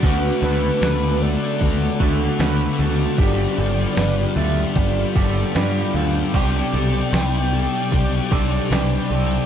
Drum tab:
HH |o-o-o-o-|o-o-o-o-|o-o-o-o-|
SD |--o---o-|--o---o-|--o---o-|
BD |o---oo--|o---oo--|o---oo--|